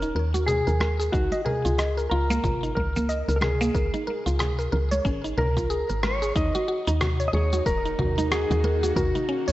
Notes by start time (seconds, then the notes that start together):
Already playing: D#1 A#4
0.02 D#4, shaker
0.15 D#2 A#4
0.34 F#4, muted conga, shaker
0.47 G#4, low conga, shaker
0.67 D#2 A#4, shaker
0.80 A#4, cross-stick, high conga
1.00 G#4, shaker
1.12 C#2 D#4 F#4, kick, shaker
1.32 D#5, muted conga, shaker
1.45 G#4 A#4, high conga, low conga
1.65 C#2 F4, shaker
1.78 D#5, cross-stick, shaker
1.97 A#4, shaker
2.10 C#2 F4 A#4
2.30 A#3, muted conga, high conga, shaker
2.44 G#1 F4, kick, low conga, shaker
2.63 D#4, shaker
2.75 C#2 A#4, kick, high conga
2.96 A#3, low conga, shaker
3.09 D#5, shaker
3.28 C#2 A#4, shaker
3.36 A#4
3.41 G#4 A#4, cross-stick, muted conga, low conga
3.61 A#3, muted conga, shaker
3.75 C#2 A#4, kick, shaker
3.94 D#4, muted conga, shaker
4.07 A#4, high conga
4.26 C#2 F4, shaker
4.39 G#4, cross-stick, low conga, shaker
4.59 A#4, shaker
4.72 C#2 A#4, low conga
4.91 C#5, muted conga, high conga, shaker
5.05 G#1 C#4, kick, shaker
5.24 D#4, shaker
5.38 C#2 A#4, low conga
5.57 F4, kick, muted conga, shaker
5.70 G#4, shaker
5.89 G#1 A#4, shaker
6.03 A#4 C#5, cross-stick, high conga
6.22 G#4, shaker
6.35 D#2 D#3 A#3 D#4 F#4 D#5, kick, shaker
6.55 F#4, muted conga, shaker
6.68 F#4
6.87 D#2 D#4, shaker
7.01 F#4, cross-stick, low conga, shaker
7.20 C#5, shaker
7.28 D#5
7.33 D#2 G#4 C#5, high conga
7.53 F#4, muted conga, shaker
7.66 D#1 A#4, kick, shaker
7.85 D#4, shaker
7.99 D#2 F#4, kick, low conga
8.18 D#4, high conga, shaker
8.31 F#4 G#4, cross-stick, shaker
8.50 D#2 F#4, low conga, shaker
8.64 A#4, muted conga
8.83 F#4, muted conga, shaker
8.96 D#2 C#4 F#4 A#4, kick, low conga, shaker
9.15 D#4, muted conga, shaker
9.29 C#4
9.48 D#2 C#5, shaker